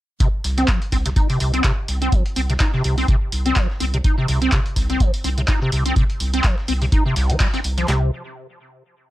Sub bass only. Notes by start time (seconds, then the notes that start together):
0.44 C2
0.92 C2
1.40 C2
1.88 C2
2.36 C2
2.84 C2
3.32 C2
3.80 C2
4.28 C2
4.76 C2
5.24 C2
5.72 C2
6.20 C2
6.68 C2
7.16 C2
7.64 C2
7.88 C2